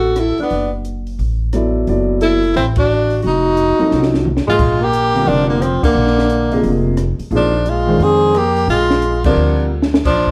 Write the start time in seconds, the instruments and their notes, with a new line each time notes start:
Already playing: upright bass A1, tenor saxophone F#4, alto saxophone A4
0.16 alto saxophone A4, cross-stick, closed hi-hat
0.20 tenor saxophone E4
0.38 alto saxophone D4, muted upright bass stroke, open hi-hat
0.43 tenor saxophone B3
0.50 upright bass F#1, open hi-hat
0.85 closed hi-hat
1.07 open hi-hat
1.19 upright bass A1, open hi-hat
1.53 upright piano F#3 B3 E4 A4 D5, cross-stick, closed hi-hat
1.87 upright bass F#1, upright piano F#3 B3 E4 A4 D5, open hi-hat
2.21 tenor saxophone E4, alto saxophone A4, closed hi-hat
2.43 open hi-hat
2.54 upright bass A1, tenor saxophone C4, alto saxophone E4, open hi-hat
2.76 tenor saxophone D4, alto saxophone F#4, kick, ride
3.10 open hi-hat
3.22 upright bass F1, alto saxophone F#4, open hi-hat
3.27 tenor saxophone D#4
3.57 closed hi-hat
3.78 upright piano F3 F#3 C4 D#4 A4, muted upright bass stroke, open hi-hat
3.91 upright bass C2, snare
4.03 snare
4.14 snare
4.25 mid tom
4.37 snare
4.47 alto saxophone G#3, tenor saxophone F4, muted upright bass stroke, floor tom
4.59 upright bass A#1, kick, crash
4.81 alto saxophone A#3, tenor saxophone G4
4.93 closed hi-hat
5.15 upright piano D3 G3 C4 F4 A#4, open hi-hat
5.25 upright bass F1, alto saxophone F3, tenor saxophone D4, open hi-hat
5.46 alto saxophone D3, tenor saxophone A#3
5.59 alto saxophone F3, tenor saxophone C4, cross-stick, closed hi-hat
5.83 alto saxophone D3, tenor saxophone A#3, muted upright bass stroke, kick, crash
5.95 upright bass A#1
6.07 snare
6.18 snare
6.29 closed hi-hat
6.52 upright piano C3 F3 A#3 G#4 D#5, open hi-hat
6.63 upright bass F1, open hi-hat
6.97 cross-stick, closed hi-hat
7.19 muted upright bass stroke, open hi-hat
7.31 upright bass A#1, upright piano C3 F3 A#3 D#4 G#4, open hi-hat
7.35 alto saxophone F3, tenor saxophone D4
7.66 alto saxophone G#3, closed hi-hat
7.70 tenor saxophone F4
7.87 upright piano D#3 G#3 D4 C5 G5
7.99 upright bass F2, alto saxophone C4, tenor saxophone G#4, open hi-hat
8.35 alto saxophone A#3, tenor saxophone G4, cross-stick, closed hi-hat
8.57 open hi-hat
8.68 upright bass A#1, alto saxophone G#3, tenor saxophone F4, open hi-hat
8.90 snare
9.02 closed hi-hat
9.24 upright piano D3 G3 C4 F4 A#4, alto saxophone F3, tenor saxophone D4, kick, crash
9.36 upright bass D2
9.82 snare
9.94 snare
10.05 upright bass A#1, alto saxophone F3, tenor saxophone D4, kick, crash
10.27 kick